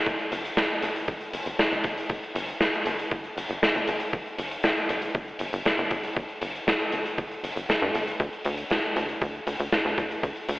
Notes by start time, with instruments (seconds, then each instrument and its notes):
0.06 analog synth bass G1, kick, closed hi-hat
0.19 closed hi-hat
0.32 analog synth bass G1, closed hi-hat
0.45 closed hi-hat
0.57 analog synth bass G1, snare, closed hi-hat
0.70 closed hi-hat
0.82 analog synth bass G1, closed hi-hat
0.96 closed hi-hat
1.08 analog synth bass G1, kick, closed hi-hat
1.21 closed hi-hat
1.33 analog synth bass G1, closed hi-hat
1.46 analog synth bass G1, closed hi-hat
1.59 analog synth bass G1, snare, closed hi-hat
1.72 analog synth bass G1, closed hi-hat
1.84 analog synth bass G1, kick, closed hi-hat
1.98 closed hi-hat
2.09 analog synth bass G1, kick, closed hi-hat
2.23 closed hi-hat
2.35 analog synth bass G1, closed hi-hat
2.48 closed hi-hat
2.60 analog synth bass G1, snare, closed hi-hat
2.74 closed hi-hat
2.86 analog synth bass G1, closed hi-hat
2.99 closed hi-hat
3.11 analog synth bass G1, kick, closed hi-hat
3.24 closed hi-hat
3.37 analog synth bass G1, closed hi-hat
3.49 analog synth bass G1, closed hi-hat
3.62 analog synth bass G1, snare, closed hi-hat
3.75 analog synth bass G1, closed hi-hat
3.88 analog synth bass G1, closed hi-hat
4.00 closed hi-hat
4.13 analog synth bass G1, kick, closed hi-hat
4.26 closed hi-hat
4.38 analog synth bass G1, closed hi-hat
4.51 closed hi-hat
4.63 analog synth bass G1, snare, closed hi-hat
4.77 closed hi-hat
4.89 analog synth bass G1, closed hi-hat
5.02 closed hi-hat
5.15 analog synth bass G1, kick, closed hi-hat
5.28 closed hi-hat
5.39 analog synth bass G1, closed hi-hat
5.53 analog synth bass G1, closed hi-hat
5.65 analog synth bass G1, snare, closed hi-hat
5.78 analog synth bass G1, closed hi-hat
5.91 analog synth bass G1, kick, closed hi-hat
6.04 closed hi-hat
6.17 analog synth bass G1, kick, closed hi-hat
6.29 closed hi-hat
6.42 analog synth bass G1, closed hi-hat
6.56 closed hi-hat
6.67 analog synth bass G1, snare, closed hi-hat
6.80 closed hi-hat
6.92 analog synth bass G1, closed hi-hat
7.05 closed hi-hat
7.18 analog synth bass G1, kick, closed hi-hat
7.31 closed hi-hat
7.44 analog synth bass G1, closed hi-hat
7.56 analog synth bass G1, closed hi-hat
7.69 analog synth bass G1, snare, closed hi-hat
7.82 analog synth bass G2, closed hi-hat
7.95 analog synth bass G1, closed hi-hat
8.07 closed hi-hat
8.20 analog synth bass D2, kick, closed hi-hat
8.33 closed hi-hat
8.45 analog synth bass D2, closed hi-hat
8.57 closed hi-hat
8.70 analog synth bass D2, snare, closed hi-hat
8.84 closed hi-hat
8.96 analog synth bass D2, closed hi-hat
9.09 closed hi-hat
9.22 analog synth bass D2, kick, closed hi-hat
9.35 closed hi-hat
9.47 analog synth bass D2, closed hi-hat
9.59 analog synth bass D2, closed hi-hat
9.72 analog synth bass D2, snare, closed hi-hat
9.85 analog synth bass D2, closed hi-hat
9.98 analog synth bass D2, kick, closed hi-hat
10.11 closed hi-hat
10.23 analog synth bass D2, kick, closed hi-hat
10.36 closed hi-hat
10.49 analog synth bass D2, closed hi-hat